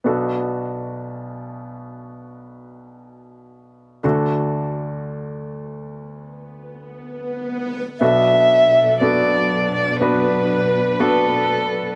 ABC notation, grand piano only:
X:1
M:4/4
L:1/8
Q:1/4=60
K:Bm
V:1 name="Grand piano"
[B,DFA]8 | [A,DFA]8 | [B,DFA]2 [B,DFA]2 [B,DFB]2 [B,DFA]2 |]
V:2 name="Grand piano" clef=bass
[B,,,B,,]8 | [D,,D,]8 | [B,,,B,,]8 |]